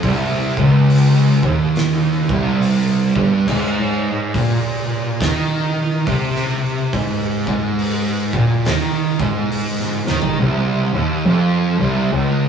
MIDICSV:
0, 0, Header, 1, 4, 480
1, 0, Start_track
1, 0, Key_signature, -3, "minor"
1, 0, Tempo, 863309
1, 18, Time_signature, 4, 2, 24, 8
1, 6942, End_track
2, 0, Start_track
2, 0, Title_t, "Distorted electric guitar"
2, 0, Program_c, 0, 30
2, 24, Note_on_c, 0, 36, 120
2, 312, Note_off_c, 0, 36, 0
2, 325, Note_on_c, 0, 37, 105
2, 802, Note_off_c, 0, 37, 0
2, 802, Note_on_c, 0, 39, 102
2, 1271, Note_off_c, 0, 39, 0
2, 1281, Note_on_c, 0, 36, 121
2, 1750, Note_off_c, 0, 36, 0
2, 1758, Note_on_c, 0, 43, 112
2, 1932, Note_off_c, 0, 43, 0
2, 1942, Note_on_c, 0, 44, 112
2, 2414, Note_off_c, 0, 44, 0
2, 2420, Note_on_c, 0, 46, 105
2, 2893, Note_off_c, 0, 46, 0
2, 2904, Note_on_c, 0, 51, 104
2, 3375, Note_off_c, 0, 51, 0
2, 3378, Note_on_c, 0, 48, 108
2, 3853, Note_off_c, 0, 48, 0
2, 3860, Note_on_c, 0, 44, 114
2, 4150, Note_off_c, 0, 44, 0
2, 4160, Note_on_c, 0, 44, 108
2, 4630, Note_off_c, 0, 44, 0
2, 4638, Note_on_c, 0, 46, 99
2, 4813, Note_off_c, 0, 46, 0
2, 4821, Note_on_c, 0, 51, 107
2, 5110, Note_off_c, 0, 51, 0
2, 5117, Note_on_c, 0, 44, 97
2, 5588, Note_off_c, 0, 44, 0
2, 5600, Note_on_c, 0, 51, 110
2, 5773, Note_off_c, 0, 51, 0
2, 5782, Note_on_c, 0, 36, 124
2, 6070, Note_off_c, 0, 36, 0
2, 6079, Note_on_c, 0, 39, 97
2, 6252, Note_off_c, 0, 39, 0
2, 6255, Note_on_c, 0, 41, 112
2, 6546, Note_off_c, 0, 41, 0
2, 6555, Note_on_c, 0, 36, 105
2, 6730, Note_off_c, 0, 36, 0
2, 6737, Note_on_c, 0, 37, 94
2, 6942, Note_off_c, 0, 37, 0
2, 6942, End_track
3, 0, Start_track
3, 0, Title_t, "Double bass"
3, 0, Program_c, 1, 43
3, 17, Note_on_c, 1, 36, 102
3, 62, Note_off_c, 1, 36, 0
3, 318, Note_on_c, 1, 37, 103
3, 363, Note_off_c, 1, 37, 0
3, 797, Note_on_c, 1, 39, 102
3, 841, Note_off_c, 1, 39, 0
3, 1274, Note_on_c, 1, 36, 104
3, 1318, Note_off_c, 1, 36, 0
3, 1754, Note_on_c, 1, 31, 90
3, 1799, Note_off_c, 1, 31, 0
3, 1933, Note_on_c, 1, 32, 101
3, 1978, Note_off_c, 1, 32, 0
3, 2417, Note_on_c, 1, 34, 108
3, 2461, Note_off_c, 1, 34, 0
3, 2895, Note_on_c, 1, 39, 91
3, 2940, Note_off_c, 1, 39, 0
3, 3373, Note_on_c, 1, 36, 90
3, 3418, Note_off_c, 1, 36, 0
3, 3855, Note_on_c, 1, 32, 98
3, 3899, Note_off_c, 1, 32, 0
3, 4153, Note_on_c, 1, 32, 101
3, 4198, Note_off_c, 1, 32, 0
3, 4631, Note_on_c, 1, 34, 101
3, 4676, Note_off_c, 1, 34, 0
3, 4815, Note_on_c, 1, 39, 106
3, 4860, Note_off_c, 1, 39, 0
3, 5112, Note_on_c, 1, 32, 102
3, 5156, Note_off_c, 1, 32, 0
3, 5597, Note_on_c, 1, 39, 87
3, 5642, Note_off_c, 1, 39, 0
3, 5780, Note_on_c, 1, 36, 89
3, 5825, Note_off_c, 1, 36, 0
3, 6080, Note_on_c, 1, 39, 99
3, 6125, Note_off_c, 1, 39, 0
3, 6259, Note_on_c, 1, 29, 100
3, 6303, Note_off_c, 1, 29, 0
3, 6558, Note_on_c, 1, 36, 103
3, 6603, Note_off_c, 1, 36, 0
3, 6736, Note_on_c, 1, 37, 99
3, 6781, Note_off_c, 1, 37, 0
3, 6942, End_track
4, 0, Start_track
4, 0, Title_t, "Drums"
4, 17, Note_on_c, 9, 46, 60
4, 18, Note_on_c, 9, 36, 110
4, 73, Note_off_c, 9, 46, 0
4, 74, Note_off_c, 9, 36, 0
4, 318, Note_on_c, 9, 36, 107
4, 374, Note_off_c, 9, 36, 0
4, 499, Note_on_c, 9, 46, 62
4, 555, Note_off_c, 9, 46, 0
4, 797, Note_on_c, 9, 36, 96
4, 852, Note_off_c, 9, 36, 0
4, 977, Note_on_c, 9, 46, 61
4, 985, Note_on_c, 9, 38, 99
4, 1033, Note_off_c, 9, 46, 0
4, 1041, Note_off_c, 9, 38, 0
4, 1275, Note_on_c, 9, 36, 126
4, 1331, Note_off_c, 9, 36, 0
4, 1455, Note_on_c, 9, 46, 65
4, 1511, Note_off_c, 9, 46, 0
4, 1755, Note_on_c, 9, 36, 118
4, 1810, Note_off_c, 9, 36, 0
4, 1933, Note_on_c, 9, 49, 104
4, 1935, Note_on_c, 9, 36, 99
4, 1989, Note_off_c, 9, 49, 0
4, 1990, Note_off_c, 9, 36, 0
4, 2415, Note_on_c, 9, 36, 104
4, 2416, Note_on_c, 9, 46, 61
4, 2471, Note_off_c, 9, 36, 0
4, 2471, Note_off_c, 9, 46, 0
4, 2893, Note_on_c, 9, 46, 56
4, 2894, Note_on_c, 9, 36, 112
4, 2901, Note_on_c, 9, 38, 113
4, 2949, Note_off_c, 9, 46, 0
4, 2950, Note_off_c, 9, 36, 0
4, 2957, Note_off_c, 9, 38, 0
4, 3374, Note_on_c, 9, 46, 66
4, 3375, Note_on_c, 9, 36, 121
4, 3429, Note_off_c, 9, 46, 0
4, 3430, Note_off_c, 9, 36, 0
4, 3532, Note_on_c, 9, 38, 32
4, 3587, Note_off_c, 9, 38, 0
4, 3854, Note_on_c, 9, 36, 101
4, 3854, Note_on_c, 9, 46, 62
4, 3909, Note_off_c, 9, 46, 0
4, 3910, Note_off_c, 9, 36, 0
4, 4154, Note_on_c, 9, 36, 100
4, 4209, Note_off_c, 9, 36, 0
4, 4331, Note_on_c, 9, 46, 71
4, 4386, Note_off_c, 9, 46, 0
4, 4633, Note_on_c, 9, 36, 105
4, 4689, Note_off_c, 9, 36, 0
4, 4810, Note_on_c, 9, 46, 66
4, 4818, Note_on_c, 9, 38, 106
4, 4866, Note_off_c, 9, 46, 0
4, 4873, Note_off_c, 9, 38, 0
4, 5113, Note_on_c, 9, 36, 120
4, 5168, Note_off_c, 9, 36, 0
4, 5291, Note_on_c, 9, 46, 64
4, 5347, Note_off_c, 9, 46, 0
4, 5448, Note_on_c, 9, 38, 37
4, 5504, Note_off_c, 9, 38, 0
4, 5600, Note_on_c, 9, 38, 67
4, 5655, Note_off_c, 9, 38, 0
4, 5682, Note_on_c, 9, 43, 95
4, 5737, Note_off_c, 9, 43, 0
4, 6942, End_track
0, 0, End_of_file